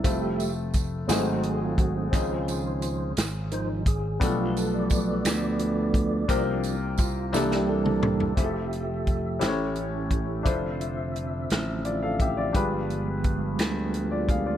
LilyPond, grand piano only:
<<
  \new Staff \with { instrumentName = "Grand piano" } { \time 6/8 \key f \major \tempo 4. = 58 << { r2. | r2. | r2. | r2. |
r2. | r2 <f' d''>16 <a' f''>16 <g' e''>16 <f' d''>16~ | <f' d''>16 r2 <f' d''>16 <aes' f''>16 <f' d''>16 | } \\ { <a c' e' f' a'>4. <a c' ees' ges' aes'>4. | <c' des' ees' f' aes'>2. | <b d' f' g' a'>2. | <bes c' f' g' bes'>4. <bes c' d' e' a'>4. |
<c' e' f' g' aes' a'>4. <cis' e' g' a' c'' cis''>4. | <d' e' f' a' c''>2. | <d' f' g' aes' b'>2. | } >> }
  \new Staff \with { instrumentName = "Grand piano" } { \clef bass \time 6/8 \key f \major r4. aes,4. | des4. r4. | b,4. r4. | c4. c4. |
r4. a,4. | r2. | g,4. r4. | }
>>